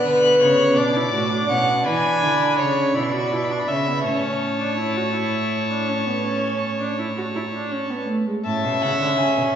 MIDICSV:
0, 0, Header, 1, 5, 480
1, 0, Start_track
1, 0, Key_signature, 3, "major"
1, 0, Tempo, 729927
1, 2663, Time_signature, 12, 3, 24, 8
1, 6283, End_track
2, 0, Start_track
2, 0, Title_t, "Violin"
2, 0, Program_c, 0, 40
2, 0, Note_on_c, 0, 90, 89
2, 491, Note_off_c, 0, 90, 0
2, 505, Note_on_c, 0, 86, 86
2, 1222, Note_on_c, 0, 83, 75
2, 1232, Note_off_c, 0, 86, 0
2, 1934, Note_off_c, 0, 83, 0
2, 1938, Note_on_c, 0, 83, 66
2, 1994, Note_on_c, 0, 85, 57
2, 2004, Note_off_c, 0, 83, 0
2, 2046, Note_on_c, 0, 83, 63
2, 2056, Note_off_c, 0, 85, 0
2, 2104, Note_on_c, 0, 85, 60
2, 2114, Note_off_c, 0, 83, 0
2, 2153, Note_on_c, 0, 83, 63
2, 2163, Note_off_c, 0, 85, 0
2, 2210, Note_on_c, 0, 85, 60
2, 2220, Note_off_c, 0, 83, 0
2, 2261, Note_on_c, 0, 83, 59
2, 2271, Note_off_c, 0, 85, 0
2, 2318, Note_on_c, 0, 85, 66
2, 2327, Note_off_c, 0, 83, 0
2, 2364, Note_on_c, 0, 83, 61
2, 2373, Note_off_c, 0, 85, 0
2, 2420, Note_on_c, 0, 85, 62
2, 2430, Note_off_c, 0, 83, 0
2, 2475, Note_on_c, 0, 83, 70
2, 2485, Note_off_c, 0, 85, 0
2, 2658, Note_off_c, 0, 83, 0
2, 2662, Note_on_c, 0, 81, 78
2, 5293, Note_off_c, 0, 81, 0
2, 5559, Note_on_c, 0, 81, 83
2, 5800, Note_on_c, 0, 78, 91
2, 5810, Note_off_c, 0, 81, 0
2, 6037, Note_on_c, 0, 80, 79
2, 6047, Note_off_c, 0, 78, 0
2, 6275, Note_off_c, 0, 80, 0
2, 6283, End_track
3, 0, Start_track
3, 0, Title_t, "Violin"
3, 0, Program_c, 1, 40
3, 33, Note_on_c, 1, 71, 80
3, 265, Note_off_c, 1, 71, 0
3, 271, Note_on_c, 1, 73, 90
3, 510, Note_on_c, 1, 74, 99
3, 520, Note_off_c, 1, 73, 0
3, 978, Note_off_c, 1, 74, 0
3, 982, Note_on_c, 1, 78, 71
3, 1217, Note_off_c, 1, 78, 0
3, 1222, Note_on_c, 1, 80, 91
3, 1690, Note_off_c, 1, 80, 0
3, 1701, Note_on_c, 1, 73, 82
3, 1939, Note_on_c, 1, 74, 87
3, 1949, Note_off_c, 1, 73, 0
3, 2420, Note_on_c, 1, 76, 85
3, 2430, Note_off_c, 1, 74, 0
3, 2659, Note_off_c, 1, 76, 0
3, 2663, Note_on_c, 1, 73, 77
3, 5293, Note_off_c, 1, 73, 0
3, 5559, Note_on_c, 1, 76, 91
3, 6283, Note_off_c, 1, 76, 0
3, 6283, End_track
4, 0, Start_track
4, 0, Title_t, "Viola"
4, 0, Program_c, 2, 41
4, 0, Note_on_c, 2, 59, 85
4, 492, Note_off_c, 2, 59, 0
4, 506, Note_on_c, 2, 62, 72
4, 631, Note_on_c, 2, 64, 74
4, 641, Note_off_c, 2, 62, 0
4, 748, Note_off_c, 2, 64, 0
4, 750, Note_on_c, 2, 66, 74
4, 865, Note_off_c, 2, 66, 0
4, 868, Note_on_c, 2, 62, 76
4, 984, Note_on_c, 2, 61, 71
4, 994, Note_off_c, 2, 62, 0
4, 1108, Note_on_c, 2, 62, 86
4, 1118, Note_off_c, 2, 61, 0
4, 1937, Note_off_c, 2, 62, 0
4, 1941, Note_on_c, 2, 64, 69
4, 2058, Note_off_c, 2, 64, 0
4, 2066, Note_on_c, 2, 66, 66
4, 2184, Note_on_c, 2, 64, 69
4, 2194, Note_off_c, 2, 66, 0
4, 2305, Note_on_c, 2, 62, 63
4, 2315, Note_off_c, 2, 64, 0
4, 2427, Note_on_c, 2, 61, 61
4, 2437, Note_off_c, 2, 62, 0
4, 2549, Note_on_c, 2, 59, 64
4, 2559, Note_off_c, 2, 61, 0
4, 2666, Note_off_c, 2, 59, 0
4, 2669, Note_on_c, 2, 61, 75
4, 3021, Note_off_c, 2, 61, 0
4, 3028, Note_on_c, 2, 62, 64
4, 3143, Note_off_c, 2, 62, 0
4, 3147, Note_on_c, 2, 64, 67
4, 3266, Note_on_c, 2, 66, 64
4, 3276, Note_off_c, 2, 64, 0
4, 3383, Note_off_c, 2, 66, 0
4, 3387, Note_on_c, 2, 64, 67
4, 3744, Note_off_c, 2, 64, 0
4, 3754, Note_on_c, 2, 62, 65
4, 3871, Note_on_c, 2, 61, 59
4, 3880, Note_off_c, 2, 62, 0
4, 3992, Note_on_c, 2, 59, 66
4, 4002, Note_off_c, 2, 61, 0
4, 4109, Note_off_c, 2, 59, 0
4, 4113, Note_on_c, 2, 61, 72
4, 4468, Note_off_c, 2, 61, 0
4, 4477, Note_on_c, 2, 62, 59
4, 4591, Note_off_c, 2, 62, 0
4, 4594, Note_on_c, 2, 64, 63
4, 4643, Note_off_c, 2, 64, 0
4, 4715, Note_on_c, 2, 66, 72
4, 4763, Note_off_c, 2, 66, 0
4, 4835, Note_on_c, 2, 64, 58
4, 4884, Note_off_c, 2, 64, 0
4, 4958, Note_on_c, 2, 62, 64
4, 5074, Note_on_c, 2, 61, 64
4, 5084, Note_off_c, 2, 62, 0
4, 5194, Note_on_c, 2, 59, 58
4, 5204, Note_off_c, 2, 61, 0
4, 5312, Note_off_c, 2, 59, 0
4, 5316, Note_on_c, 2, 57, 64
4, 5436, Note_off_c, 2, 57, 0
4, 5440, Note_on_c, 2, 56, 61
4, 5488, Note_off_c, 2, 56, 0
4, 5558, Note_on_c, 2, 61, 76
4, 6283, Note_off_c, 2, 61, 0
4, 6283, End_track
5, 0, Start_track
5, 0, Title_t, "Cello"
5, 0, Program_c, 3, 42
5, 33, Note_on_c, 3, 50, 82
5, 269, Note_on_c, 3, 49, 70
5, 279, Note_off_c, 3, 50, 0
5, 505, Note_on_c, 3, 47, 78
5, 515, Note_off_c, 3, 49, 0
5, 744, Note_off_c, 3, 47, 0
5, 747, Note_on_c, 3, 45, 78
5, 980, Note_off_c, 3, 45, 0
5, 985, Note_on_c, 3, 47, 75
5, 1223, Note_on_c, 3, 52, 70
5, 1233, Note_off_c, 3, 47, 0
5, 1463, Note_on_c, 3, 50, 71
5, 1473, Note_off_c, 3, 52, 0
5, 1704, Note_on_c, 3, 49, 67
5, 1714, Note_off_c, 3, 50, 0
5, 1939, Note_off_c, 3, 49, 0
5, 1943, Note_on_c, 3, 47, 67
5, 2177, Note_off_c, 3, 47, 0
5, 2186, Note_on_c, 3, 47, 66
5, 2419, Note_off_c, 3, 47, 0
5, 2422, Note_on_c, 3, 49, 64
5, 2664, Note_on_c, 3, 45, 67
5, 2674, Note_off_c, 3, 49, 0
5, 5320, Note_off_c, 3, 45, 0
5, 5561, Note_on_c, 3, 45, 68
5, 5680, Note_on_c, 3, 47, 71
5, 5690, Note_off_c, 3, 45, 0
5, 5798, Note_off_c, 3, 47, 0
5, 5802, Note_on_c, 3, 49, 70
5, 5850, Note_off_c, 3, 49, 0
5, 5920, Note_on_c, 3, 50, 69
5, 6033, Note_off_c, 3, 50, 0
5, 6037, Note_on_c, 3, 49, 59
5, 6085, Note_off_c, 3, 49, 0
5, 6157, Note_on_c, 3, 47, 72
5, 6205, Note_off_c, 3, 47, 0
5, 6283, End_track
0, 0, End_of_file